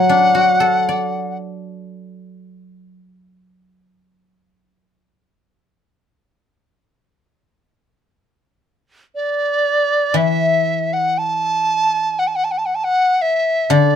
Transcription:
0.00 0.87 A2 soft
0.00 2.98 F#3 soft
0.00 1.37 F#5 medium
0.09 2.21 D4 soft
0.35 2.47 F#4 soft
0.60 2.72 A4 soft
0.89 3.00 D5 soft
9.15 10.18 D5 medium
10.14 13.20 E3 soft
10.14 10.95 E5 medium
10.93 11.20 F#5 medium
11.18 12.21 A5 medium
12.19 12.29 F#5 medium
12.27 12.37 A5 medium
12.36 12.46 F#5 medium
12.44 12.53 A5 medium
12.51 12.60 F#5 medium
12.58 12.67 A5 medium
12.66 12.77 F#5 medium
12.75 12.86 A5 medium
12.84 13.23 F#5 medium
13.22 13.74 E5 medium
13.70 13.96 D3 medium
13.70 13.96 D5 medium

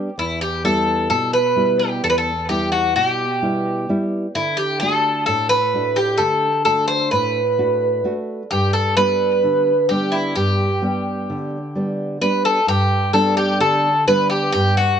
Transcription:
0.00 0.15 G4 medium
0.18 1.07 E2 medium
0.18 0.41 E4 medium
0.41 0.63 G4 medium
0.64 1.38 G3 soft
0.64 1.38 B3 soft
0.64 1.38 E4 soft
0.64 1.09 A4 medium
1.10 2.00 B2 medium
1.10 1.32 A4 medium
1.33 1.79 B4 medium
1.56 2.30 G3 soft
1.56 2.30 B3 soft
1.56 2.31 E4 soft
1.79 2.03 G4 medium
2.03 2.93 E2 medium
2.03 2.09 A4 medium
2.10 2.17 B4 medium
2.18 2.49 A4 medium
2.49 3.23 G3 soft
2.49 3.23 B3 soft
2.49 3.24 E4 soft
2.49 2.71 G4 medium
2.72 2.95 F#4 medium
2.96 3.85 B2 medium
2.96 3.96 G4 medium
3.42 3.88 G3 soft
3.42 3.88 B3 soft
3.42 3.89 E4 soft
3.89 4.26 G3 soft
3.89 4.26 B3 soft
3.89 4.26 E4 soft
4.35 5.25 D3 medium
4.35 4.56 E4 medium
4.57 4.79 G4 medium
4.80 5.55 A3 soft
4.80 5.56 D4 soft
4.80 5.56 F#4 medium
4.80 5.23 A4 medium
5.26 6.17 A2 medium
5.26 5.48 A4 medium
5.49 5.97 B4 medium
5.74 6.48 A3 soft
5.74 6.48 D4 soft
5.74 6.48 F#4 soft
5.96 6.20 G4 medium
6.18 7.09 D3 medium
6.18 6.62 A4 medium
6.65 7.40 A3 soft
6.65 7.40 D4 soft
6.65 7.40 F#4 soft
6.65 6.87 A4 medium
6.88 7.10 C5 medium
7.11 8.02 A2 medium
7.11 8.12 B4 medium
7.58 8.03 A3 soft
7.58 8.04 D4 soft
7.58 8.04 F#4 soft
8.04 8.41 A3 soft
8.04 8.42 D4 soft
8.04 8.42 F#4 soft
8.51 9.41 G2 medium
8.51 8.73 G4 medium
8.73 8.95 A4 medium
8.97 9.71 G3 soft
8.97 9.71 B3 soft
8.97 9.71 D4 soft
8.97 9.88 B4 medium
9.44 10.34 D3 medium
9.89 10.64 G3 soft
9.89 10.65 B3 soft
9.89 10.65 D4 soft
9.89 10.13 G4 medium
10.12 10.34 E4 medium
10.35 11.26 G2 medium
10.35 12.17 G4 medium
10.82 11.56 G3 soft
10.82 11.57 B3 soft
10.82 11.57 D4 soft
11.30 12.19 D3 medium
11.75 12.20 G3 soft
11.75 12.21 B3 soft
11.75 12.21 D4 soft
12.21 12.58 G3 soft
12.21 12.59 B3 soft
12.21 12.59 D4 soft
12.21 12.45 B4 medium
12.45 12.66 A4 medium
12.67 13.57 G2 medium
12.67 13.11 G4 medium
13.13 13.88 G3 medium
13.13 13.88 B3 soft
13.13 13.88 D4 medium
13.13 13.35 A4 medium
13.37 13.59 G4 medium
13.60 14.50 D3 medium
13.60 14.04 A4 medium
14.07 14.81 G3 soft
14.07 14.81 B3 soft
14.07 14.82 D4 soft
14.07 14.29 B4 medium
14.30 14.51 G4 medium
14.52 15.00 G2 medium
14.52 14.74 G4 medium
14.77 15.00 F#4 medium

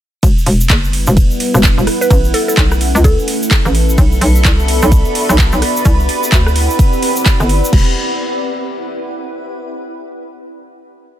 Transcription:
0.23 0.45 E1 medium
0.23 2.09 G3 medium
0.23 2.09 B3 medium
0.23 2.86 E4 medium
0.23 3.94 E4 medium
0.23 3.94 B4 medium
0.23 kick loud
0.23 ride medium
0.23 shaker medium
0.38 shaker soft
0.46 0.68 E1 loud
0.46 open hi-hat loud
0.61 shaker medium
0.69 1.05 F#1 loud
0.69 kick loud
0.69 clap loud
0.69 ride medium
0.69 shaker medium
0.84 shaker soft
0.93 open hi-hat medium
1.04 1.29 E1 loud
1.04 2.79 B4 medium
1.04 shaker medium
1.09 2.86 F#5 medium
1.17 kick loud
1.17 ride medium
1.17 shaker medium
1.31 shaker soft
1.40 open hi-hat loud
1.54 1.76 E1 loud
1.54 cross-stick medium
1.54 shaker medium
1.63 kick loud
1.63 clap loud
1.63 ride medium
1.63 shaker medium
1.78 1.86 E1 loud
1.78 shaker soft
1.87 cross-stick medium
1.87 open hi-hat medium
2.01 2.16 B4 loud
2.01 shaker medium
2.10 2.32 A1 medium
2.10 3.96 A3 medium
2.10 3.96 C#4 medium
2.10 4.74 A4 medium
2.10 kick loud
2.10 ride medium
2.10 shaker medium
2.24 shaker soft
2.34 2.43 A4 medium
2.34 open hi-hat loud
2.48 2.54 A4 medium
2.48 6.62 B5 medium
2.48 shaker medium
2.57 2.93 B1 loud
2.57 kick loud
2.57 clap loud
2.57 ride medium
2.57 shaker medium
2.64 4.68 E5 medium
2.72 cross-stick medium
2.72 shaker soft
2.81 open hi-hat loud
2.95 3.16 C#2 loud
2.95 shaker medium
3.04 3.51 A4 medium
3.04 kick loud
3.04 ride medium
3.04 shaker medium
3.19 shaker soft
3.28 open hi-hat loud
3.42 shaker medium
3.51 kick loud
3.51 clap loud
3.51 ride medium
3.51 shaker medium
3.65 3.96 A1 loud
3.65 cross-stick medium
3.65 shaker soft
3.75 open hi-hat loud
3.89 shaker medium
3.98 4.20 B1 loud
3.98 5.84 B3 medium
3.98 5.84 D4 medium
3.98 5.84 F#4 medium
3.98 6.62 B4 medium
3.98 7.69 D5 medium
3.98 kick loud
3.98 ride medium
3.98 shaker medium
4.12 shaker soft
4.21 4.43 B1 loud
4.21 open hi-hat loud
4.35 shaker medium
4.45 4.80 C2 medium
4.45 kick loud
4.45 clap loud
4.45 ride medium
4.45 shaker medium
4.60 shaker soft
4.68 6.46 F#5 medium
4.68 open hi-hat loud
4.82 5.04 B1 loud
4.82 shaker medium
4.92 kick loud
4.92 ride medium
4.92 shaker medium
5.05 shaker soft
5.15 open hi-hat loud
5.29 5.51 B1 loud
5.29 cross-stick medium
5.29 shaker medium
5.39 kick loud
5.39 clap loud
5.39 ride medium
5.39 shaker medium
5.52 5.61 B1 loud
5.52 shaker soft
5.62 cross-stick medium
5.62 open hi-hat loud
5.76 shaker medium
5.85 6.07 C2 loud
5.85 7.71 C4 medium
5.85 7.73 C4 medium
5.85 7.71 E4 medium
5.85 7.71 G4 medium
5.85 kick loud
5.85 ride medium
5.85 shaker medium
6.00 shaker soft
6.09 open hi-hat loud
6.23 shaker medium
6.32 6.68 D2 loud
6.32 kick loud
6.32 clap loud
6.32 ride medium
6.32 shaker medium
6.42 7.73 G4 medium
6.46 cross-stick medium
6.46 shaker soft
6.56 open hi-hat loud
6.70 7.73 D5 medium
6.70 shaker medium
6.79 kick loud
6.79 ride medium
6.79 shaker medium
6.93 shaker soft
7.03 open hi-hat loud
7.16 shaker medium
7.26 kick loud
7.26 clap loud
7.26 ride medium
7.26 shaker medium
7.40 7.61 G1 loud
7.40 cross-stick medium
7.40 shaker soft
7.49 open hi-hat loud
7.65 shaker medium
7.73 7.95 E1 loud
7.73 9.56 E4 medium
7.73 kick loud
7.73 crash medium
7.82 9.57 B4 medium
7.89 9.57 F#5 medium

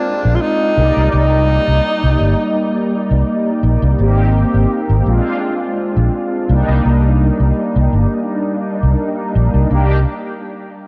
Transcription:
0.00 0.71 G#3 medium
0.00 0.71 C4 medium
0.00 0.37 D4 loud
0.00 0.71 D4 medium
0.00 0.72 F4 medium
0.25 0.36 A#1 medium
0.35 0.43 F4 medium
0.41 1.11 D#4 loud
0.76 0.90 C2 medium
0.76 3.92 G3 loud
0.76 3.92 A#3 medium
0.76 3.93 D#4 loud
0.76 3.93 D5 medium
0.96 1.07 C2 loud
1.12 1.57 C2 medium
1.12 3.23 D#4 loud
1.68 1.79 C2 medium
2.03 2.14 C2 medium
2.20 2.33 G1 medium
3.11 3.22 C2 medium
3.63 3.75 A#1 medium
3.82 3.93 C2 loud
3.98 4.43 G#1 loud
3.98 4.99 A#3 medium
3.98 5.00 C4 medium
3.98 5.00 D#4 medium
3.98 5.01 G4 medium
4.54 4.65 G#1 medium
4.89 5.00 G#1 medium
5.05 5.18 A#1 medium
5.05 6.42 G#3 medium
5.05 6.42 C4 medium
5.05 6.43 D4 medium
5.05 6.43 F4 medium
5.96 6.07 A#1 medium
6.48 6.61 C2 medium
6.48 9.63 G3 medium
6.48 9.64 A#3 medium
6.48 9.64 D4 medium
6.48 9.65 D#4 loud
6.68 6.79 C2 loud
6.85 7.29 C2 medium
7.40 7.50 C2 medium
7.76 7.86 C2 medium
7.92 8.04 G1 medium
8.83 8.93 C2 medium
9.35 9.47 A#1 loud
9.54 9.65 C2 loud
9.69 10.04 C2 medium
9.69 9.97 A#3 medium
9.69 9.98 D4 medium
9.69 9.99 D#4 medium
9.74 9.99 G4 loud

